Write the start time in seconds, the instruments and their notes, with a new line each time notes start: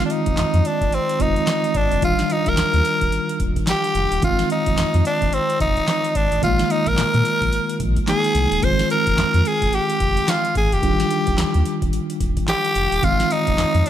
Already playing: tine electric piano D#3 G#3 C4 F4
0.05 tenor saxophone D4
0.10 tenor saxophone D#4, closed hi-hat
0.26 sub bass F1, kick, closed hi-hat
0.37 sub bass F2, snare, clap, closed hi-hat
0.54 sub bass F2, closed hi-hat
0.65 tenor saxophone D4, closed hi-hat
0.81 sub bass F1, kick, closed hi-hat
0.92 tenor saxophone C4, closed hi-hat
1.09 closed hi-hat
1.19 sub bass F1, tine electric piano D#3 G#3 C4 F4, tenor saxophone D#4, kick, closed hi-hat
1.36 closed hi-hat
1.47 snare, clap, closed hi-hat
1.64 closed hi-hat
1.75 sub bass G#1, tenor saxophone D4, kick, closed hi-hat
1.91 sub bass F1, closed hi-hat
2.01 sub bass D#1, tine electric piano D#3 G3 D4 F4, tenor saxophone F4, kick, closed hi-hat
2.19 snare, closed hi-hat
2.30 tenor saxophone D#4, closed hi-hat
2.46 sub bass D#1, tenor saxophone A#4, kick, closed hi-hat
2.57 sub bass D#2, snare, clap, closed hi-hat
2.74 sub bass D#2, closed hi-hat
2.85 closed hi-hat
3.01 sub bass D#1, kick, closed hi-hat
3.12 closed hi-hat
3.29 closed hi-hat
3.40 sub bass D#1, kick, closed hi-hat
3.56 kick, closed hi-hat
3.67 tenor saxophone G4, snare, clap, closed hi-hat
3.84 closed hi-hat
3.95 sub bass F1, closed hi-hat
4.11 sub bass D#1, closed hi-hat
4.21 sub bass F1, tine electric piano D#3 G#3 C4 F4, tenor saxophone F4, kick, closed hi-hat
4.39 snare, closed hi-hat
4.50 tenor saxophone D#4, closed hi-hat
4.66 sub bass F1, kick, closed hi-hat
4.78 sub bass F2, snare, clap, closed hi-hat
4.94 sub bass F2, closed hi-hat
5.05 tenor saxophone D4, closed hi-hat
5.22 sub bass F1, kick, closed hi-hat
5.33 tenor saxophone C4, closed hi-hat
5.50 closed hi-hat
5.60 sub bass F1, tenor saxophone D#4, kick, closed hi-hat
5.77 closed hi-hat
5.88 snare, clap, closed hi-hat
6.04 closed hi-hat
6.15 sub bass G#1, tenor saxophone D4, kick, closed hi-hat
6.32 sub bass G#1, closed hi-hat
6.42 sub bass A#1, tine electric piano D#3 G#3 A#3 F4, tenor saxophone F4, kick, closed hi-hat
6.59 snare, closed hi-hat
6.70 tenor saxophone D#4, closed hi-hat
6.86 sub bass A#1, tenor saxophone A#4, kick, closed hi-hat
6.98 sub bass A#2, snare, clap, closed hi-hat
7.14 sub bass A#2, closed hi-hat
7.25 closed hi-hat
7.42 sub bass A#1, kick, closed hi-hat
7.53 closed hi-hat
7.69 closed hi-hat
7.80 sub bass A#1, kick, closed hi-hat
7.96 kick, closed hi-hat
8.07 tine electric piano D#3 G#3 A#3 D#4, tenor saxophone G#4, snare, clap, closed hi-hat
8.24 closed hi-hat
8.35 sub bass C2, closed hi-hat
8.52 sub bass D#1, closed hi-hat
8.62 sub bass F1, tine electric piano D#3 G#3 C4 F4, tenor saxophone C5, kick, closed hi-hat
8.79 snare, closed hi-hat
8.90 tenor saxophone A#4, closed hi-hat
9.07 sub bass F1, kick, closed hi-hat
9.18 sub bass F2, snare, clap, closed hi-hat
9.34 sub bass F2, closed hi-hat
9.45 tenor saxophone G#4, closed hi-hat
9.62 sub bass F1, kick, closed hi-hat
9.73 tenor saxophone G4, closed hi-hat
9.90 closed hi-hat
10.00 sub bass F1, kick, closed hi-hat
10.17 closed hi-hat
10.28 tenor saxophone F4, snare, clap, closed hi-hat
10.45 closed hi-hat
10.55 sub bass G#1, tenor saxophone G#4, kick, closed hi-hat
10.72 sub bass F1, tenor saxophone G4, closed hi-hat
10.82 sub bass D#1, tine electric piano D#3 G3 D4 F4, kick, closed hi-hat
11.00 snare, closed hi-hat
11.11 closed hi-hat
11.27 sub bass D#1, kick, closed hi-hat
11.38 sub bass D#2, snare, clap, closed hi-hat
11.54 sub bass D#2, closed hi-hat
11.66 closed hi-hat
11.82 sub bass D#1, kick, closed hi-hat
11.93 closed hi-hat
12.10 closed hi-hat
12.21 sub bass D#1, kick, closed hi-hat
12.37 kick, closed hi-hat
12.48 tenor saxophone G4, snare, clap, closed hi-hat
12.65 closed hi-hat
12.75 sub bass F1, closed hi-hat
12.92 sub bass D#1, closed hi-hat
13.02 sub bass F1, tine electric piano D#3 G#3 C4 F4, tenor saxophone F4, kick, closed hi-hat
13.20 snare, closed hi-hat
13.31 tenor saxophone D#4, closed hi-hat
13.47 sub bass F1, kick, closed hi-hat
13.58 sub bass F2, snare, clap, closed hi-hat
13.75 sub bass F2, closed hi-hat
13.86 tenor saxophone D4, closed hi-hat